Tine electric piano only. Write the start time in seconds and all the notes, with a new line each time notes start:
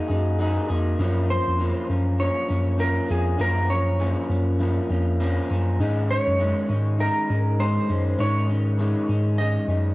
0.09 F#2
0.70 F2
1.00 F#2
1.47 F2
1.89 F#2
2.50 F#2
3.10 F2
3.40 F#2
4.30 F#2
4.90 F2
5.50 F#2
5.79 G#2
6.27 F#2
6.70 G#2
7.30 G#2
7.89 F#2
8.19 G#2
9.08 G#2
9.68 F#2